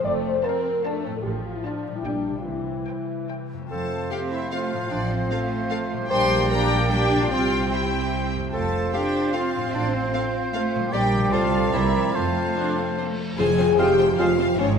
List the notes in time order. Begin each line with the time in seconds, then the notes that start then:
Already playing: F2 F3 A3 C4
0.01 F4
0.05 F1 F2 A3 D5
0.25 C5
0.44 C4 A#4 C5 F5 A5
0.84 A3 D4 C5 F5 A5
1.05 A2 C4
1.11 A3 A4
1.16 C4
1.20 F3 F4 G4
1.25 A1 A2
1.46 F4
1.56 E4
1.64 D4 C5 F5 A5
1.87 A#2
1.92 G3
1.96 D4 E4
2.01 G4
2.05 A#1 A#2 G3 D4 D5 G5
2.29 C3
2.33 G3
2.38 C4 F4
2.42 G4
2.46 C2 C3 E3 E4
2.88 C5 G5
3.30 C5 G5
3.53 F2
3.58 A3
3.62 C4
3.67 C4 F4 C5 F5
3.71 F2 F3 A3 A4 A5
4.11 C4 G4 A4 F5 G5
4.31 E4 E5
4.51 A3 C4 F4 A4 F5
4.73 A2
4.78 A3
4.82 C4
4.87 F4
4.91 A1 F3 D4 F4 D5
5.11 C4 C5
5.31 A3 C4 A4 F5
5.70 C4 A4 F5
5.93 A#2
5.97 G3
6.02 D4
6.06 A#3 G4 G5
6.10 A#1 G3 A#3 D4 G4 C5 D5 G5 C6
6.50 D4 G4 A#4 G5 A#5
6.90 D4 G4 G5
7.14 C3
7.18 G3 F5
7.22 C4 F4
7.27 G4
7.31 C2 C4 F4 G4 C5 F5 G5
7.71 C4 E4 G4 E5 G5
8.36 F2
8.40 A3
8.45 C4
8.49 F1 F4 C5
8.53 A3 C4 F4 A4 F5 A5
8.93 C4 D4 G4 A4 F5 G5
9.33 C4 F4 A4 F5
9.56 A2
9.61 A3
9.65 C4
9.69 A1 F4
9.74 D4 D5
9.94 C4 C5
10.13 C4 A4 F5
10.53 A3 C4 A4 F5
10.75 A#2
10.80 G3
10.84 D4
10.89 G4 D5 G5
10.93 A#1 G3 A#3 D4 G4 D5 G5
11.15 C3
11.20 A3
11.24 C4
11.29 A3 C4 F4 A4 C5
11.33 C2 C4 A4 C5 F5 A5
11.56 C3
11.60 A#3
11.65 C4
11.69 E4 A#4 C5
11.73 C2 G3 A#3 G4 C5 E5 A#5
11.97 F3
12.01 A3
12.06 C4
12.10 A4 C5
12.15 F2 A3 F4 C5 F5 A5
12.56 D4 C5
12.77 C4
12.97 A#3 C5
13.18 A3
13.38 F1 F2 F3 C4 F4 G#4 C5 G#5, tam-tam
13.49 C4
13.58 C4 F4 C5
13.69 C5
13.78 F1 F2 G#3 C4 F4 G4 C5 F5 G5 G#5
13.89 F5
13.98 C4 F4 C5 C6
14.09 G4 F5
14.19 F1 F2 G#3 C4 F4 C5 F5 G#5
14.29 F4
14.39 C4 F4 C5
14.49 F4
14.58 G#1 G#2 C4 C#4 F4 C5 C#5
14.69 G#3